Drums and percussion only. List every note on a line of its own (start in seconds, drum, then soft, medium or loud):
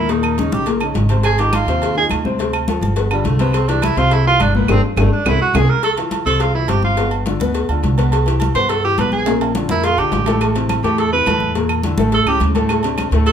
0.09 cowbell loud
0.09 high conga soft
0.09 low agogo medium
0.23 high conga soft
0.23 low agogo loud
0.23 claves medium
0.38 cowbell medium
0.38 high conga medium
0.52 high conga loud
0.52 low agogo medium
0.66 cowbell loud
0.66 low agogo medium
0.80 high conga soft
0.80 low agogo loud
0.80 claves medium
0.95 cowbell medium
0.95 high conga medium
0.95 low timbale medium
1.09 cowbell medium
1.09 low agogo medium
1.23 cowbell loud
1.23 low agogo loud
1.23 claves medium
1.38 cowbell medium
1.38 high conga soft
1.38 low agogo medium
1.53 cowbell medium
1.53 high conga medium
1.53 low agogo loud
1.53 claves medium
1.68 cowbell medium
1.82 cowbell loud
1.82 high conga soft
1.82 low agogo medium
1.96 high conga soft
2.10 cowbell medium
2.10 high conga medium
2.10 low agogo loud
2.10 claves medium
2.25 high conga medium
2.38 cowbell loud
2.38 high conga soft
2.38 low agogo medium
2.53 high conga soft
2.53 low agogo loud
2.53 claves medium
2.68 cowbell medium
2.68 high conga medium
2.83 high conga loud
2.83 low agogo medium
2.96 cowbell loud
2.96 high conga soft
2.96 low agogo medium
3.11 high conga soft
3.11 low agogo loud
3.11 claves medium
3.25 cowbell medium
3.25 high conga medium
3.39 cowbell medium
3.39 high conga medium
3.39 low agogo loud
3.53 cowbell loud
3.53 high conga soft
3.53 low agogo loud
3.53 claves medium
3.68 cowbell medium
3.68 high conga soft
3.68 low agogo medium
3.82 cowbell medium
3.82 high conga loud
3.82 low agogo loud
3.82 claves medium
3.97 cowbell medium
3.97 high conga soft
4.11 cowbell loud
4.11 high conga soft
4.11 low agogo medium
4.26 high conga soft
4.40 cowbell medium
4.40 high conga loud
4.40 low agogo loud
4.40 claves medium
4.55 high conga medium
4.68 cowbell loud
4.68 high conga medium
4.68 high timbale medium
4.68 claves medium
4.97 cowbell loud
4.97 high conga loud
4.97 high timbale loud
4.97 claves medium
5.26 cowbell medium
5.26 high conga medium
5.26 high timbale loud
5.26 claves loud
5.55 cowbell loud
5.55 high conga loud
5.55 high timbale loud
5.55 claves loud
5.83 cowbell loud
5.83 high conga soft
5.83 low agogo loud
5.97 cowbell medium
5.97 high conga soft
5.97 low agogo medium
6.11 cowbell medium
6.11 high conga medium
6.11 low agogo loud
6.26 cowbell medium
6.26 high conga soft
6.40 cowbell loud
6.40 high conga soft
6.40 low agogo loud
6.54 high conga soft
6.68 cowbell medium
6.68 high conga medium
6.68 low agogo loud
6.83 high conga medium
6.97 cowbell loud
6.97 high conga soft
6.97 low agogo medium
7.11 high conga soft
7.11 low agogo loud
7.26 cowbell medium
7.26 high conga medium
7.40 high conga medium
7.40 low agogo medium
7.54 cowbell medium
7.54 high conga soft
7.54 low agogo medium
7.69 high conga soft
7.69 low agogo loud
7.84 cowbell medium
7.84 high conga medium
7.98 cowbell medium
7.98 low agogo loud
8.12 cowbell loud
8.12 high conga soft
8.12 low agogo loud
8.26 cowbell medium
8.26 high conga soft
8.26 low agogo medium
8.40 cowbell medium
8.40 high conga medium
8.40 low agogo loud
8.55 cowbell medium
8.55 high conga soft
8.69 cowbell loud
8.69 high conga soft
8.69 low agogo loud
8.84 high conga soft
8.98 cowbell medium
8.98 high conga medium
8.98 low agogo loud
9.12 high conga medium
9.26 cowbell loud
9.26 high conga soft
9.26 high timbale loud
9.26 low agogo medium
9.41 high conga soft
9.41 high timbale loud
9.41 low agogo loud
9.55 cowbell medium
9.55 high conga loud
9.69 high conga loud
9.69 low timbale medium
9.69 low agogo medium
9.84 cowbell loud
9.84 high conga soft
9.84 low agogo medium
9.98 high conga soft
9.98 low agogo loud
10.12 cowbell medium
10.12 high conga medium
10.12 low timbale medium
10.26 cowbell medium
10.26 low timbale medium
10.26 low agogo medium
10.41 cowbell loud
10.41 low agogo loud
10.41 claves medium
10.55 cowbell medium
10.55 high conga soft
10.55 low agogo loud
10.69 cowbell medium
10.69 high conga medium
10.69 low agogo loud
10.69 claves medium
10.84 cowbell medium
10.84 high conga soft
10.98 cowbell loud
10.98 high conga soft
10.98 low agogo medium
11.12 high conga soft
11.26 cowbell medium
11.26 high conga medium
11.26 low timbale medium
11.26 low agogo loud
11.26 claves medium
11.40 high conga medium
11.55 cowbell loud
11.55 high conga soft
11.55 low agogo medium
11.69 high conga soft
11.69 low agogo loud
11.69 claves medium
11.83 cowbell medium
11.83 high conga loud
11.98 high conga loud
11.98 low agogo medium
12.12 cowbell medium
12.12 high conga soft
12.12 low agogo medium
12.26 high conga soft
12.26 low agogo loud
12.26 claves medium
12.40 cowbell medium
12.40 high conga medium
12.55 cowbell medium
12.55 high conga medium
12.55 low agogo medium
12.69 cowbell loud
12.69 high conga soft
12.69 low agogo loud
12.69 claves medium
12.83 cowbell medium
12.83 high conga soft
12.83 low agogo medium
12.98 cowbell medium
12.98 high conga medium
12.98 low agogo loud
12.98 claves medium
13.12 cowbell medium
13.12 high conga soft
13.26 cowbell loud
13.26 high conga soft
13.26 low agogo medium